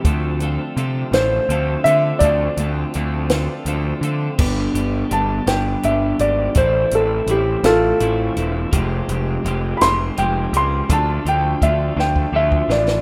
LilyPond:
<<
  \new Staff \with { instrumentName = "Upright piano" } { \time 6/8 \key d \dorian \tempo 4. = 55 << { r4. c''4 e''8 | d''2 r4 | r4 a''8 g''8 e''8 d''8 | c''8 a'8 g'8 a'4. |
r4. <b'' c'''>8 g''8 c'''8 | a''8 g''8 e''8 g''8 e''8 d''8 | } \\ { r2. | r2. | r2. | r4. f'4.~ |
f'8 r2 r8 | r2. | } >> }
  \new Staff \with { instrumentName = "Clean electric guitar" } { \time 6/8 \key d \dorian <d f c' d' a'>8 <d f c' d' a'>8 <d f c' d' a'>8 <d f c' d' a'>8 <d f c' d' a'>8 <d f c' d' a'>8 | <d f c' d' a'>8 <d f c' d' a'>8 <d f c' d' a'>8 <d f c' d' a'>8 <d f c' d' a'>8 <d f c' d' a'>8 | <g, d g b d' g'>8 <g b d' g'>8 <g b d' g'>8 <g b d' g'>8 <g b d' g'>8 <g b d' g'>8 | <a, e a c' e'>8 <a c' e'>8 <e a c' e'>8 <a c' e'>8 <e a c' e'>8 <a c' e'>8 |
<f, c f aes c' g'>8 <f aes c' g'>8 <f aes c' g'>8 <f aes c' g'>8 <f aes c' g'>8 <f aes c' g'>8 | <d a d' f'>8 <a d' f'>8 <d a d' f'>8 <a d' f'>8 <d a d' f'>8 <a d' f'>8 | }
  \new Staff \with { instrumentName = "Clean electric guitar" } { \time 6/8 \key d \dorian <a c' f'>8 <a c' f'>8 <a c' f'>8 <a c' f'>8 <a c' f'>8 <a c' f'>8 | <a c' f'>8 <a c' f'>8 <a c' f'>8 <a c' f'>8 <a c' f'>8 <a c' f'>8 | <b d' g'>8 <d' g'>8 <b d' g'>8 <d' g'>8 <b d' g'>8 <d' g'>8 | <e a c'>8 <a c'>8 <e a c'>8 <a c'>8 <e a c'>8 <a c'>8 |
<f aes c' g'>8 <aes c' g'>8 <f aes c' g'>8 <aes c' g'>8 <f aes c' g'>8 <aes c' g'>8 | <f a d' f'>8 <a d' f'>8 <f a d' f'>8 <a d' f'>8 <f a d' f'>8 <a d' f'>8 | }
  \new Staff \with { instrumentName = "Picked electric bass" } { \clef bass \time 6/8 \key d \dorian d,4 c8 a,,8 d,8 d8 | d,8 d,8 d,4 d,8 d8 | g,,8 g,,8 g,,8 g,,8 g,,8 aes,,8 | a,,8 a,,8 a,,8 a,,8 a,,8 e,,8 |
f,,8 f,,8 f,,8 f,,8 f,,8 des,8 | d,8 d,8 d,8 d,8 d,8 a,,8 | }
  \new DrumStaff \with { instrumentName = "Drums" } \drummode { \time 6/8 <hh bd>8 hh8 hh8 <hh sn>8 hh8 hh8 | <hh bd>8 hh8 hh8 <hh sn>8 hh8 hh8 | <cymc bd>8 hh8 hh8 <hh sn>8 hh8 hh8 | <hh bd>8 hh8 hh8 <hh sn>8 hh8 hh8 |
<hh bd>8 hh8 hh8 <hh sn>8 hh8 hh8 | <hh bd>8 hh8 <hh bd>8 sn16 bd8 bd16 sn16 sn16 | }
>>